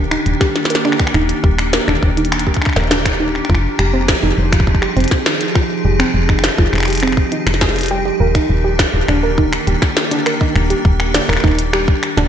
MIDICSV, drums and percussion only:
0, 0, Header, 1, 2, 480
1, 0, Start_track
1, 0, Key_signature, -3, "major"
1, 0, Tempo, 588235
1, 934, Time_signature, 4, 2, 24, 8
1, 10022, End_track
2, 0, Start_track
2, 0, Title_t, "Drums"
2, 93, Note_on_c, 9, 26, 74
2, 175, Note_off_c, 9, 26, 0
2, 213, Note_on_c, 9, 42, 52
2, 295, Note_off_c, 9, 42, 0
2, 333, Note_on_c, 9, 26, 53
2, 333, Note_on_c, 9, 36, 117
2, 333, Note_on_c, 9, 38, 59
2, 414, Note_off_c, 9, 36, 0
2, 415, Note_off_c, 9, 26, 0
2, 415, Note_off_c, 9, 38, 0
2, 454, Note_on_c, 9, 38, 50
2, 533, Note_off_c, 9, 38, 0
2, 533, Note_on_c, 9, 38, 67
2, 572, Note_on_c, 9, 42, 78
2, 612, Note_off_c, 9, 38, 0
2, 612, Note_on_c, 9, 38, 89
2, 654, Note_off_c, 9, 42, 0
2, 693, Note_on_c, 9, 26, 35
2, 694, Note_off_c, 9, 38, 0
2, 753, Note_off_c, 9, 26, 0
2, 753, Note_on_c, 9, 26, 45
2, 812, Note_off_c, 9, 26, 0
2, 812, Note_on_c, 9, 26, 57
2, 813, Note_on_c, 9, 36, 100
2, 873, Note_off_c, 9, 26, 0
2, 873, Note_on_c, 9, 26, 66
2, 894, Note_off_c, 9, 36, 0
2, 934, Note_off_c, 9, 26, 0
2, 934, Note_on_c, 9, 26, 50
2, 1015, Note_off_c, 9, 26, 0
2, 1054, Note_on_c, 9, 42, 53
2, 1136, Note_off_c, 9, 42, 0
2, 1173, Note_on_c, 9, 36, 122
2, 1254, Note_off_c, 9, 36, 0
2, 1293, Note_on_c, 9, 26, 71
2, 1375, Note_off_c, 9, 26, 0
2, 1413, Note_on_c, 9, 38, 114
2, 1413, Note_on_c, 9, 42, 76
2, 1495, Note_off_c, 9, 38, 0
2, 1495, Note_off_c, 9, 42, 0
2, 1534, Note_on_c, 9, 26, 51
2, 1616, Note_off_c, 9, 26, 0
2, 1653, Note_on_c, 9, 36, 102
2, 1735, Note_off_c, 9, 36, 0
2, 1774, Note_on_c, 9, 42, 43
2, 1834, Note_off_c, 9, 42, 0
2, 1834, Note_on_c, 9, 42, 52
2, 1894, Note_off_c, 9, 42, 0
2, 1894, Note_on_c, 9, 26, 78
2, 1894, Note_on_c, 9, 42, 64
2, 1954, Note_off_c, 9, 42, 0
2, 1954, Note_on_c, 9, 42, 76
2, 1975, Note_off_c, 9, 26, 0
2, 2013, Note_on_c, 9, 36, 52
2, 2036, Note_off_c, 9, 42, 0
2, 2075, Note_on_c, 9, 42, 51
2, 2093, Note_off_c, 9, 36, 0
2, 2093, Note_on_c, 9, 36, 68
2, 2135, Note_on_c, 9, 26, 49
2, 2156, Note_off_c, 9, 42, 0
2, 2165, Note_off_c, 9, 26, 0
2, 2165, Note_on_c, 9, 26, 41
2, 2173, Note_off_c, 9, 36, 0
2, 2173, Note_on_c, 9, 36, 92
2, 2195, Note_off_c, 9, 26, 0
2, 2195, Note_on_c, 9, 26, 33
2, 2225, Note_off_c, 9, 26, 0
2, 2225, Note_on_c, 9, 26, 27
2, 2254, Note_off_c, 9, 36, 0
2, 2255, Note_off_c, 9, 26, 0
2, 2255, Note_on_c, 9, 26, 22
2, 2255, Note_on_c, 9, 38, 60
2, 2284, Note_off_c, 9, 26, 0
2, 2284, Note_on_c, 9, 26, 19
2, 2315, Note_off_c, 9, 26, 0
2, 2315, Note_on_c, 9, 26, 15
2, 2336, Note_off_c, 9, 38, 0
2, 2345, Note_off_c, 9, 26, 0
2, 2345, Note_on_c, 9, 26, 13
2, 2374, Note_on_c, 9, 38, 112
2, 2427, Note_off_c, 9, 26, 0
2, 2456, Note_off_c, 9, 38, 0
2, 2493, Note_on_c, 9, 36, 97
2, 2494, Note_on_c, 9, 26, 77
2, 2494, Note_on_c, 9, 42, 75
2, 2574, Note_off_c, 9, 36, 0
2, 2575, Note_off_c, 9, 26, 0
2, 2575, Note_off_c, 9, 42, 0
2, 2735, Note_on_c, 9, 26, 24
2, 2814, Note_off_c, 9, 26, 0
2, 2814, Note_on_c, 9, 26, 32
2, 2853, Note_on_c, 9, 36, 120
2, 2893, Note_off_c, 9, 26, 0
2, 2893, Note_on_c, 9, 26, 39
2, 2934, Note_off_c, 9, 36, 0
2, 2975, Note_off_c, 9, 26, 0
2, 3093, Note_on_c, 9, 26, 72
2, 3093, Note_on_c, 9, 42, 50
2, 3174, Note_off_c, 9, 26, 0
2, 3174, Note_off_c, 9, 42, 0
2, 3332, Note_on_c, 9, 36, 106
2, 3333, Note_on_c, 9, 26, 47
2, 3333, Note_on_c, 9, 38, 117
2, 3333, Note_on_c, 9, 42, 76
2, 3414, Note_off_c, 9, 36, 0
2, 3415, Note_off_c, 9, 26, 0
2, 3415, Note_off_c, 9, 38, 0
2, 3415, Note_off_c, 9, 42, 0
2, 3692, Note_on_c, 9, 36, 110
2, 3693, Note_on_c, 9, 26, 71
2, 3693, Note_on_c, 9, 42, 89
2, 3752, Note_off_c, 9, 36, 0
2, 3752, Note_on_c, 9, 36, 94
2, 3775, Note_off_c, 9, 26, 0
2, 3775, Note_off_c, 9, 42, 0
2, 3812, Note_off_c, 9, 36, 0
2, 3812, Note_on_c, 9, 36, 75
2, 3872, Note_off_c, 9, 36, 0
2, 3872, Note_on_c, 9, 36, 62
2, 3934, Note_on_c, 9, 26, 47
2, 3954, Note_off_c, 9, 36, 0
2, 4015, Note_off_c, 9, 26, 0
2, 4053, Note_on_c, 9, 42, 23
2, 4084, Note_off_c, 9, 42, 0
2, 4084, Note_on_c, 9, 42, 29
2, 4113, Note_off_c, 9, 42, 0
2, 4113, Note_on_c, 9, 42, 37
2, 4143, Note_off_c, 9, 42, 0
2, 4143, Note_on_c, 9, 42, 42
2, 4172, Note_on_c, 9, 36, 105
2, 4173, Note_on_c, 9, 38, 63
2, 4225, Note_off_c, 9, 42, 0
2, 4254, Note_off_c, 9, 36, 0
2, 4254, Note_off_c, 9, 38, 0
2, 4293, Note_on_c, 9, 26, 71
2, 4293, Note_on_c, 9, 38, 111
2, 4375, Note_off_c, 9, 26, 0
2, 4375, Note_off_c, 9, 38, 0
2, 4413, Note_on_c, 9, 42, 75
2, 4494, Note_off_c, 9, 42, 0
2, 4532, Note_on_c, 9, 36, 123
2, 4533, Note_on_c, 9, 26, 49
2, 4614, Note_off_c, 9, 26, 0
2, 4614, Note_off_c, 9, 36, 0
2, 4894, Note_on_c, 9, 26, 76
2, 4894, Note_on_c, 9, 42, 50
2, 4975, Note_off_c, 9, 26, 0
2, 4975, Note_off_c, 9, 42, 0
2, 5132, Note_on_c, 9, 26, 44
2, 5132, Note_on_c, 9, 36, 96
2, 5212, Note_off_c, 9, 26, 0
2, 5212, Note_on_c, 9, 26, 35
2, 5214, Note_off_c, 9, 36, 0
2, 5253, Note_on_c, 9, 38, 112
2, 5253, Note_on_c, 9, 42, 75
2, 5292, Note_off_c, 9, 26, 0
2, 5292, Note_on_c, 9, 26, 29
2, 5334, Note_off_c, 9, 38, 0
2, 5334, Note_off_c, 9, 42, 0
2, 5372, Note_on_c, 9, 36, 113
2, 5374, Note_off_c, 9, 26, 0
2, 5454, Note_off_c, 9, 36, 0
2, 5492, Note_on_c, 9, 26, 32
2, 5511, Note_off_c, 9, 26, 0
2, 5511, Note_on_c, 9, 26, 36
2, 5533, Note_off_c, 9, 26, 0
2, 5533, Note_on_c, 9, 26, 43
2, 5552, Note_off_c, 9, 26, 0
2, 5552, Note_on_c, 9, 26, 50
2, 5571, Note_off_c, 9, 26, 0
2, 5571, Note_on_c, 9, 26, 55
2, 5592, Note_off_c, 9, 26, 0
2, 5592, Note_on_c, 9, 26, 58
2, 5613, Note_on_c, 9, 42, 40
2, 5632, Note_off_c, 9, 42, 0
2, 5632, Note_on_c, 9, 42, 47
2, 5652, Note_off_c, 9, 42, 0
2, 5652, Note_on_c, 9, 42, 55
2, 5672, Note_off_c, 9, 42, 0
2, 5672, Note_on_c, 9, 42, 62
2, 5674, Note_off_c, 9, 26, 0
2, 5692, Note_off_c, 9, 42, 0
2, 5692, Note_on_c, 9, 42, 70
2, 5712, Note_off_c, 9, 42, 0
2, 5712, Note_on_c, 9, 42, 76
2, 5734, Note_on_c, 9, 26, 45
2, 5773, Note_off_c, 9, 26, 0
2, 5773, Note_on_c, 9, 26, 37
2, 5794, Note_off_c, 9, 42, 0
2, 5813, Note_off_c, 9, 26, 0
2, 5813, Note_on_c, 9, 26, 31
2, 5852, Note_on_c, 9, 36, 102
2, 5895, Note_off_c, 9, 26, 0
2, 5934, Note_off_c, 9, 36, 0
2, 5972, Note_on_c, 9, 42, 49
2, 6054, Note_off_c, 9, 42, 0
2, 6093, Note_on_c, 9, 26, 73
2, 6093, Note_on_c, 9, 38, 59
2, 6152, Note_off_c, 9, 38, 0
2, 6152, Note_on_c, 9, 38, 47
2, 6174, Note_off_c, 9, 26, 0
2, 6212, Note_off_c, 9, 38, 0
2, 6212, Note_on_c, 9, 36, 111
2, 6212, Note_on_c, 9, 38, 111
2, 6272, Note_off_c, 9, 38, 0
2, 6272, Note_on_c, 9, 38, 30
2, 6294, Note_off_c, 9, 36, 0
2, 6332, Note_on_c, 9, 42, 33
2, 6353, Note_off_c, 9, 42, 0
2, 6353, Note_on_c, 9, 42, 40
2, 6354, Note_off_c, 9, 38, 0
2, 6372, Note_off_c, 9, 42, 0
2, 6372, Note_on_c, 9, 42, 45
2, 6392, Note_off_c, 9, 42, 0
2, 6392, Note_on_c, 9, 42, 53
2, 6413, Note_off_c, 9, 42, 0
2, 6413, Note_on_c, 9, 42, 57
2, 6433, Note_off_c, 9, 42, 0
2, 6433, Note_on_c, 9, 42, 63
2, 6515, Note_off_c, 9, 42, 0
2, 6813, Note_on_c, 9, 26, 48
2, 6813, Note_on_c, 9, 36, 98
2, 6813, Note_on_c, 9, 42, 51
2, 6894, Note_off_c, 9, 36, 0
2, 6895, Note_off_c, 9, 26, 0
2, 6895, Note_off_c, 9, 42, 0
2, 7173, Note_on_c, 9, 36, 111
2, 7174, Note_on_c, 9, 26, 71
2, 7174, Note_on_c, 9, 38, 112
2, 7174, Note_on_c, 9, 42, 70
2, 7254, Note_off_c, 9, 36, 0
2, 7256, Note_off_c, 9, 26, 0
2, 7256, Note_off_c, 9, 38, 0
2, 7256, Note_off_c, 9, 42, 0
2, 7413, Note_on_c, 9, 26, 48
2, 7495, Note_off_c, 9, 26, 0
2, 7653, Note_on_c, 9, 36, 99
2, 7734, Note_off_c, 9, 36, 0
2, 7773, Note_on_c, 9, 26, 70
2, 7855, Note_off_c, 9, 26, 0
2, 7894, Note_on_c, 9, 42, 49
2, 7975, Note_off_c, 9, 42, 0
2, 8013, Note_on_c, 9, 36, 113
2, 8014, Note_on_c, 9, 26, 50
2, 8014, Note_on_c, 9, 38, 60
2, 8095, Note_off_c, 9, 26, 0
2, 8095, Note_off_c, 9, 36, 0
2, 8095, Note_off_c, 9, 38, 0
2, 8133, Note_on_c, 9, 38, 109
2, 8214, Note_off_c, 9, 38, 0
2, 8253, Note_on_c, 9, 42, 73
2, 8335, Note_off_c, 9, 42, 0
2, 8373, Note_on_c, 9, 26, 72
2, 8454, Note_off_c, 9, 26, 0
2, 8493, Note_on_c, 9, 36, 96
2, 8575, Note_off_c, 9, 36, 0
2, 8613, Note_on_c, 9, 26, 49
2, 8695, Note_off_c, 9, 26, 0
2, 8734, Note_on_c, 9, 42, 49
2, 8815, Note_off_c, 9, 42, 0
2, 8853, Note_on_c, 9, 36, 110
2, 8935, Note_off_c, 9, 36, 0
2, 8974, Note_on_c, 9, 26, 70
2, 9056, Note_off_c, 9, 26, 0
2, 9094, Note_on_c, 9, 38, 105
2, 9094, Note_on_c, 9, 42, 69
2, 9176, Note_off_c, 9, 38, 0
2, 9176, Note_off_c, 9, 42, 0
2, 9215, Note_on_c, 9, 26, 48
2, 9245, Note_off_c, 9, 26, 0
2, 9245, Note_on_c, 9, 26, 40
2, 9274, Note_off_c, 9, 26, 0
2, 9274, Note_on_c, 9, 26, 32
2, 9304, Note_off_c, 9, 26, 0
2, 9304, Note_on_c, 9, 26, 27
2, 9333, Note_on_c, 9, 36, 97
2, 9335, Note_off_c, 9, 26, 0
2, 9335, Note_on_c, 9, 26, 22
2, 9364, Note_off_c, 9, 26, 0
2, 9364, Note_on_c, 9, 26, 18
2, 9395, Note_off_c, 9, 26, 0
2, 9395, Note_on_c, 9, 26, 15
2, 9415, Note_off_c, 9, 36, 0
2, 9426, Note_off_c, 9, 26, 0
2, 9426, Note_on_c, 9, 26, 11
2, 9454, Note_on_c, 9, 42, 85
2, 9507, Note_off_c, 9, 26, 0
2, 9536, Note_off_c, 9, 42, 0
2, 9575, Note_on_c, 9, 26, 75
2, 9656, Note_off_c, 9, 26, 0
2, 9693, Note_on_c, 9, 36, 107
2, 9775, Note_off_c, 9, 36, 0
2, 9815, Note_on_c, 9, 26, 51
2, 9815, Note_on_c, 9, 42, 49
2, 9896, Note_off_c, 9, 26, 0
2, 9896, Note_off_c, 9, 42, 0
2, 9935, Note_on_c, 9, 38, 59
2, 10016, Note_off_c, 9, 38, 0
2, 10022, End_track
0, 0, End_of_file